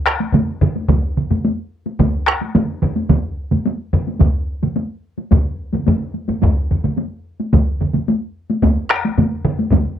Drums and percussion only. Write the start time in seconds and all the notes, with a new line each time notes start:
0.06 taiko rim
0.20 taiko high
0.32 taiko low-mid, taiko mid, taiko high
0.61 taiko low-mid, taiko mid
0.76 taiko high
0.88 taiko, taiko low-mid, taiko mid, taiko high
1.17 taiko low-mid, taiko mid
1.31 taiko low-mid, taiko mid, taiko high
1.45 taiko high
1.86 taiko high
1.99 taiko, taiko low-mid, taiko mid, taiko high
2.27 taiko rim
2.41 taiko high
2.55 taiko low-mid, taiko mid, taiko high
2.82 taiko low-mid, taiko mid
2.96 taiko high
3.10 taiko, taiko low-mid, taiko mid, taiko high
3.51 taiko low-mid, taiko mid, taiko high
3.66 taiko high
3.93 taiko low-mid, taiko mid
4.07 taiko high
4.20 taiko, taiko low-mid, taiko mid, taiko high
4.63 taiko low-mid, taiko mid, taiko high
4.76 taiko high
5.18 taiko high
5.31 taiko, taiko low-mid, taiko mid, taiko high
5.73 taiko low-mid, taiko mid, taiko high
5.87 taiko low-mid, taiko mid, taiko high
6.14 taiko high
6.28 taiko low-mid, taiko mid, taiko high
6.42 taiko, taiko low-mid, taiko mid, taiko high
6.71 taiko low-mid, taiko mid
6.84 taiko low-mid, taiko mid, taiko high
6.98 taiko high
7.40 taiko high
7.53 taiko, taiko low-mid, taiko mid, taiko high
7.81 taiko low-mid, taiko mid
7.94 taiko low-mid, taiko mid, taiko high
8.08 taiko high
8.50 taiko high
8.62 taiko, taiko low-mid, taiko mid, taiko high
8.90 taiko rim
9.05 taiko high
9.18 taiko low-mid, taiko mid, taiko high
9.45 taiko low-mid, taiko mid
9.59 taiko high
9.72 taiko, taiko low-mid, taiko mid, taiko high